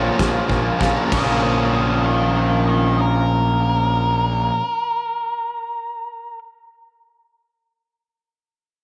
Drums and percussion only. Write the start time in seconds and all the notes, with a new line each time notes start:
0.19 kick, snare, closed hi-hat
0.50 kick, snare
0.81 kick, snare
1.12 kick, crash